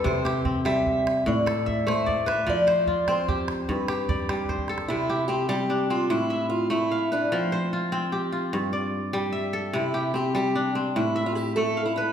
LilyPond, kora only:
<<
  \new Staff \with { instrumentName = "Kora" } { \time 12/8 \key c \major \tempo 4. = 99 <c' a'>8 g'8 c'4. r4 a'8 e''4 d''8 b'8~ | b'8 c''8 f'4 g'4. g'8 d''4 c''8 a'8~ | a'8 g'8 c'4 d'8 c'4 e''4. f''8 b'8~ | b'8 c''8 f'4 g'8 f'4 d''4. e''8 a'8~ |
a'8 g'8 c'4 d'8 c'4 e''4. f''8 b'8 | }
  \new Staff \with { instrumentName = "Kora" } { \clef bass \time 12/8 \key c \major c4 r8 g4 r8 a,4 r8 a4 r8 | f4 r8 c'4 r8 g,4 r8 g4 r8 | c4 r8 g4 r8 a,4 r8 a4 r8 | f4 r8 c'4 r8 g,4 r8 g4 r8 |
c4 r8 g4 r8 a,4 r8 a4 r8 | }
>>